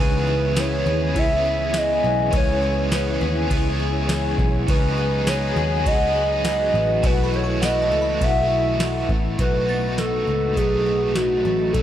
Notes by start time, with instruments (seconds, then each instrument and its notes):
Already playing: picked electric bass C#2, overdriven electric guitar C#3 E3, twelve-string acoustic guitar C#3 B3 G#4, string machine G#4, synth bell G#5 B5 D#6
0.00 overdriven electric guitar B3 C#4 G#4, string machine E4 C#5 B5, soft synth lead B4
0.27 twelve-string acoustic guitar E4
0.55 overdriven electric guitar E3 B3 C#4, twelve-string acoustic guitar B3, snare, ride, tambourine
0.59 overdriven electric guitar G#4, soft synth lead C#5
0.86 picked electric bass D#2, twelve-string acoustic guitar G#4
1.12 picked electric bass C#2, overdriven electric guitar E3, twelve-string acoustic guitar G#3, synth bell E4, kick, ride
1.16 overdriven electric guitar B3 C#4, soft synth lead E5
1.23 overdriven electric guitar G#4
1.45 twelve-string acoustic guitar E4
1.74 twelve-string acoustic guitar G#4, soft synth lead D#5, snare, ride, tambourine
2.04 picked electric bass B1, twelve-string acoustic guitar B3
2.31 picked electric bass C#2, overdriven electric guitar C#3 E3 B3 C#4 G#4, twelve-string acoustic guitar C#3, string machine C#6, kick, ride
2.37 soft synth lead C#5
2.62 twelve-string acoustic guitar E4, synth bell C#5
2.90 overdriven electric guitar E3 B3 C#4, twelve-string acoustic guitar B3, snare, ride, tambourine
2.94 overdriven electric guitar G#4, soft synth lead B4
3.21 picked electric bass D#2, twelve-string acoustic guitar G#4, synth bell B4
3.46 overdriven electric guitar E3, twelve-string acoustic guitar G#3
3.51 picked electric bass C#2, overdriven electric guitar B3 C#4, kick, ride
3.57 overdriven electric guitar G#4
3.80 twelve-string acoustic guitar E4
4.09 twelve-string acoustic guitar G#4, snare, ride, tambourine
4.38 picked electric bass B1, twelve-string acoustic guitar B3, kick
4.67 picked electric bass C#2, overdriven electric guitar C#3 F#3 B3 D#4 G#4, twelve-string acoustic guitar C#3, string machine G#4 D#5 F#5 B5, soft synth lead B4, kick, ride
4.97 twelve-string acoustic guitar D#4
5.27 overdriven electric guitar F#3 B3 D#4, twelve-string acoustic guitar B3, soft synth lead C#5, snare, ride, tambourine
5.32 overdriven electric guitar G#4
5.56 picked electric bass D#2, twelve-string acoustic guitar G#4
5.84 picked electric bass C#2, overdriven electric guitar F#3, twelve-string acoustic guitar F#3, soft synth lead D#5, kick, ride
5.88 overdriven electric guitar B3 D#4
5.94 overdriven electric guitar G#4
6.16 twelve-string acoustic guitar D#4
6.45 twelve-string acoustic guitar G#4, synth bell F#5, snare, ride, tambourine
6.74 picked electric bass A1, twelve-string acoustic guitar B3
7.02 picked electric bass B1, overdriven electric guitar B2 E3 A3 E4 F#4, twelve-string acoustic guitar B2, string machine E4 A4 B5, soft synth lead B4, synth bell G#5, kick, ride
7.23 synth bell B5
7.33 twelve-string acoustic guitar E4, soft synth lead C#5
7.44 synth bell C#6
7.61 overdriven electric guitar E3 A3 E4, twelve-string acoustic guitar B3, soft synth lead D#5, synth bell F#5, snare, ride, tambourine
7.65 overdriven electric guitar F#4
7.82 synth bell A5
7.91 picked electric bass C#2, twelve-string acoustic guitar A4
8.02 synth bell B5
8.18 picked electric bass B1, overdriven electric guitar E3, twelve-string acoustic guitar F#3, kick
8.22 overdriven electric guitar A3 E4, soft synth lead E5, ride
8.28 overdriven electric guitar F#4
8.50 twelve-string acoustic guitar E4
8.79 twelve-string acoustic guitar A4, snare, ride, tambourine
9.09 picked electric bass A1, twelve-string acoustic guitar B3, kick
9.38 picked electric bass B1, overdriven electric guitar B2 F#3 A3 D#4 F#4, twelve-string acoustic guitar B2, string machine A3 D#5 F#5 B5, soft synth lead B4, kick, closed hi-hat
9.67 twelve-string acoustic guitar B3, overdriven electric guitar D#4 F#4, synth bell A6
9.72 overdriven electric guitar A3
9.98 twelve-string acoustic guitar D#4, soft synth lead A4, snare, closed hi-hat
10.27 picked electric bass C#2, twelve-string acoustic guitar B3
10.54 picked electric bass B1, overdriven electric guitar F#3, twelve-string acoustic guitar D#4, soft synth lead G#4, kick, closed hi-hat
10.58 overdriven electric guitar A3 D#4
10.64 overdriven electric guitar F#4
10.86 twelve-string acoustic guitar B3
11.14 twelve-string acoustic guitar D#4, soft synth lead F#4, snare, closed hi-hat
11.45 picked electric bass A1, twelve-string acoustic guitar A4
11.73 picked electric bass B1, overdriven electric guitar B2 F#3 A3 D#4 F#4, twelve-string acoustic guitar B2 A4, soft synth lead A4, string machine G#5, kick, closed hi-hat